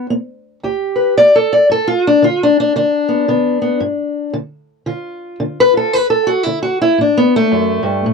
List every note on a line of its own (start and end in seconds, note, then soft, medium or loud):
0.10 0.59 B3 medium
0.63 1.12 D2 medium
0.63 1.35 G4 medium
0.96 1.17 B4 soft
1.18 1.66 B3 medium
1.18 1.35 D5 loud
1.35 1.52 A4 loud
1.53 1.70 D5 medium
1.70 2.18 G2 medium
1.70 1.88 A4 loud
1.88 2.05 F4 medium
2.07 2.24 D4 loud
2.22 2.71 D3 medium
2.22 2.41 F4 medium
2.43 2.59 D4 loud
2.60 2.75 D4 loud
2.76 3.24 D3 medium
2.76 4.34 D4 medium
3.08 3.27 B3 soft
3.28 3.77 D3 medium
3.28 3.60 B3 soft
3.62 3.79 B3 soft
3.80 4.29 G2 medium
4.33 4.82 D3 medium
4.86 5.35 D3 medium
4.86 5.71 F4 soft
5.40 5.88 D3 medium
5.60 5.76 B4 loud
5.74 5.91 F4 soft
5.74 5.93 A4 loud
5.93 6.41 D2 medium
5.93 6.10 B4 loud
6.10 6.27 A4 medium
6.27 6.43 F#4 loud
6.43 6.94 D3 medium
6.43 6.62 E4 loud
6.63 6.80 F#4 medium
6.82 6.98 E4 loud
6.98 7.47 A2 medium
6.98 7.17 D4 medium
7.17 7.34 B3 medium
7.36 8.13 A3 loud
7.52 7.82 F#2 medium
7.83 8.04 G2 medium
8.06 8.13 A2 medium